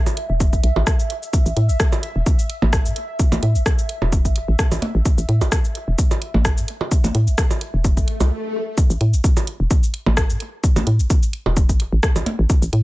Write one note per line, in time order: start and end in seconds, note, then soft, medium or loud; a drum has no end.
0.00 8.31 E5 medium
0.06 percussion blips medium
0.06 shaker soft
0.17 closed hi-hat medium
0.30 0.55 E1 medium
0.40 kick loud
0.40 shaker medium
0.53 0.60 A1 loud
0.53 kick medium
0.53 shaker soft
0.64 0.72 B1 medium
0.64 closed hi-hat medium
0.76 0.83 A1 medium
0.76 percussion blips medium
0.87 kick loud
0.87 cross-stick medium
0.87 shaker medium
0.99 shaker soft
1.10 closed hi-hat medium
1.23 shaker soft
1.33 kick loud
1.33 shaker medium
1.46 1.53 A1 medium
1.46 shaker soft
1.57 1.71 A2 medium
1.57 closed hi-hat medium
1.69 1.76 A1 loud
1.69 shaker soft
1.80 kick loud
1.80 cross-stick medium
1.80 shaker medium
1.92 percussion blips medium
1.92 shaker soft
2.03 closed hi-hat medium
2.16 2.23 E1 medium
2.26 kick loud
2.26 shaker medium
2.39 shaker soft
2.50 closed hi-hat medium
2.62 2.87 A1 loud
2.62 percussion blips medium
2.73 kick loud
2.73 cross-stick medium
2.73 shaker medium
2.86 2.93 A2 medium
2.86 shaker soft
2.96 closed hi-hat medium
3.19 kick loud
3.19 shaker medium
3.32 3.39 A1 loud
3.32 percussion blips medium
3.32 shaker soft
3.43 3.57 A2 medium
3.43 closed hi-hat medium
3.55 3.62 A1 loud
3.55 shaker soft
3.66 kick loud
3.66 cross-stick medium
3.66 shaker medium
3.79 shaker soft
3.89 closed hi-hat medium
4.02 4.27 E1 medium
4.02 percussion blips medium
4.12 kick loud
4.12 shaker medium
4.25 4.37 A1 medium
4.25 kick medium
4.25 shaker soft
4.36 4.44 G1 medium
4.36 closed hi-hat medium
4.48 4.55 A1 medium
4.59 kick loud
4.59 cross-stick medium
4.59 shaker medium
4.72 4.79 A1 medium
4.72 percussion blips medium
4.72 shaker soft
4.82 closed hi-hat medium
4.82 percussion blips medium
4.95 5.02 A1 loud
5.05 kick loud
5.05 shaker medium
5.18 5.25 A1 loud
5.18 shaker soft
5.29 5.43 A2 medium
5.29 closed hi-hat medium
5.41 5.48 A1 medium
5.41 percussion blips medium
5.41 shaker soft
5.52 kick loud
5.52 cross-stick medium
5.52 shaker medium
5.65 shaker soft
5.75 closed hi-hat medium
5.88 5.95 E1 medium
5.98 kick loud
5.98 shaker medium
6.11 percussion blips medium
6.11 shaker soft
6.22 closed hi-hat medium
6.34 6.59 A1 loud
6.34 percussion blips medium
6.45 kick loud
6.45 cross-stick medium
6.45 shaker medium
6.58 6.65 A2 medium
6.58 shaker soft
6.68 closed hi-hat medium
6.81 percussion blips medium
6.91 kick loud
6.91 shaker medium
7.04 7.11 A1 loud
7.04 percussion blips medium
7.04 shaker soft
7.15 7.29 A2 medium
7.15 closed hi-hat medium
7.27 7.34 A1 loud
7.27 shaker soft
7.38 kick loud
7.38 cross-stick medium
7.38 shaker medium
7.51 percussion blips medium
7.51 shaker soft
7.61 closed hi-hat medium
7.74 7.99 E1 medium
7.84 kick loud
7.84 swell medium
7.84 shaker medium
7.97 8.04 A1 loud
7.97 kick medium
7.97 shaker soft
8.08 closed hi-hat medium
8.20 8.31 C2 medium
8.20 percussion blips medium
8.20 shaker soft
8.77 kick loud
8.77 shaker medium
8.90 8.97 A1 loud
8.90 shaker soft
9.01 9.15 A2 medium
9.01 closed hi-hat medium
9.13 9.21 A1 loud
9.13 shaker soft
9.24 kick loud
9.24 shaker medium
9.37 percussion blips medium
9.37 shaker soft
9.47 closed hi-hat medium
9.60 9.67 E1 medium
9.71 kick loud
9.71 shaker medium
9.83 shaker soft
9.94 closed hi-hat loud
10.06 10.31 A1 loud
10.06 percussion blips medium
10.17 kick loud
10.17 cross-stick loud
10.17 shaker medium
10.30 10.37 A2 medium
10.30 shaker soft
10.40 closed hi-hat medium
10.64 kick loud
10.64 shaker medium
10.76 10.83 A1 loud
10.76 percussion blips medium
10.76 percussion blips loud
10.76 shaker soft
10.87 11.01 A2 medium
10.87 closed hi-hat medium
10.99 11.07 A1 loud
10.99 shaker soft
11.10 kick loud
11.10 shaker medium
11.23 shaker soft
11.33 closed hi-hat loud
11.46 11.71 E1 medium
11.46 percussion blips medium
11.57 kick loud
11.57 shaker medium
11.69 11.81 A1 loud
11.69 kick medium
11.69 shaker soft
11.80 11.88 G1 medium
11.80 closed hi-hat medium
11.92 12.00 A1 medium
12.03 kick loud
12.03 cross-stick loud
12.03 shaker medium
12.16 12.23 A1 medium
12.16 percussion blips medium
12.16 shaker soft
12.26 closed hi-hat loud
12.26 percussion blips medium
12.39 12.46 A1 loud
12.50 kick loud
12.50 shaker medium
12.62 12.69 A1 loud
12.62 shaker soft
12.73 12.83 A2 medium
12.73 closed hi-hat loud